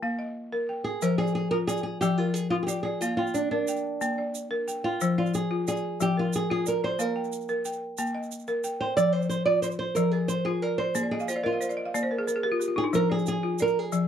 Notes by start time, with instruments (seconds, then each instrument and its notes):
Already playing: nylon-string guitar F4, balafon G5
0.03 balafon A#3 F5
0.19 balafon D#5
0.52 balafon A#4
0.69 balafon G5
0.84 nylon-string guitar G#4
1.02 balafon F3 C5, nylon-string guitar A#4, shaker
1.18 nylon-string guitar G#4, balafon D5
1.27 shaker
1.35 nylon-string guitar G#4
1.51 balafon F4, nylon-string guitar A#4
1.67 nylon-string guitar G#4, balafon D5, shaker
1.77 shaker
1.83 nylon-string guitar G#4
2.01 balafon F3 D5, nylon-string guitar G4, shaker
2.18 nylon-string guitar F4, balafon A#4
2.34 nylon-string guitar G#4, shaker
2.50 nylon-string guitar F4, balafon F4
2.63 nylon-string guitar G4 G#4
2.68 balafon D5, shaker
2.83 nylon-string guitar G#4, balafon D5
3.01 balafon A#3 F5, nylon-string guitar F4, shaker
3.17 nylon-string guitar F4, balafon G5
3.27 shaker
3.34 nylon-string guitar D4, shaker
3.51 nylon-string guitar D4, balafon A#4
3.68 balafon G5, shaker
4.01 balafon A#3 G5, shaker
4.18 balafon D5
4.35 shaker
4.51 balafon A#4
4.68 balafon G5, shaker
4.84 nylon-string guitar F4, balafon G5
5.01 balafon F3 C5, shaker
5.18 nylon-string guitar F4, balafon D5
5.26 shaker
5.34 nylon-string guitar G#4, shaker
5.51 balafon F4
5.68 nylon-string guitar G#4, balafon D5, shaker
5.76 shaker
6.01 balafon F3 D5, nylon-string guitar G4, shaker
6.17 nylon-string guitar F4, balafon A#4
6.33 nylon-string guitar G#4, shaker
6.50 balafon F4, nylon-string guitar G#4
6.66 nylon-string guitar A#4, balafon D5, shaker
6.84 nylon-string guitar C5, balafon D5
6.99 balafon A#3 F5, nylon-string guitar A#4, shaker
7.16 balafon G5
7.24 shaker
7.32 shaker
7.49 balafon A#4, shaker
7.65 balafon G5, shaker
7.73 shaker
7.98 balafon A#3 G5, shaker
8.06 shaker
8.15 balafon D#5
8.23 shaker
8.31 shaker
8.39 shaker
8.47 balafon A#4, shaker
8.64 balafon G5, shaker
8.80 nylon-string guitar C5, balafon G5
8.97 balafon F3, nylon-string guitar D5, shaker
9.12 nylon-string guitar C5, balafon D5
9.22 shaker
9.29 nylon-string guitar C5, shaker
9.45 balafon F4, nylon-string guitar D5
9.62 nylon-string guitar C5, balafon D5, shaker
9.71 shaker
9.79 nylon-string guitar C5
9.95 balafon F3 D5, nylon-string guitar A#4, shaker
10.11 nylon-string guitar G#4, balafon A#4
10.28 nylon-string guitar C5, shaker
10.45 balafon F4, nylon-string guitar G#4
10.62 nylon-string guitar A#4, balafon D5
10.78 nylon-string guitar C5, balafon D5
10.95 balafon A#3, nylon-string guitar G#4, shaker
11.03 balafon D5
11.11 nylon-string guitar G#4, balafon D#5
11.20 balafon F5, shaker
11.28 nylon-string guitar F4, balafon C5, shaker
11.36 balafon D5
11.44 nylon-string guitar F4, balafon A#4 D#5
11.53 balafon F5
11.61 balafon C5, shaker
11.69 balafon D5, shaker
11.77 balafon D#5
11.86 balafon F5
11.94 balafon A#3 D5, shaker
12.03 balafon C5
12.11 balafon A#4
12.19 balafon G#4
12.27 balafon A#4, shaker
12.36 balafon G#4
12.43 balafon G4 A#4
12.52 balafon F4
12.60 balafon G4, shaker
12.68 balafon F4
12.76 balafon D#4, nylon-string guitar G#4
12.84 balafon D4
12.93 balafon F3 C5, nylon-string guitar A#4, shaker
13.10 nylon-string guitar G#4, balafon D5
13.19 shaker
13.26 nylon-string guitar G#4, shaker
13.43 balafon F4
13.59 nylon-string guitar A#4, balafon D5, shaker
13.67 shaker
13.79 nylon-string guitar G#4
13.92 balafon F3 D5, shaker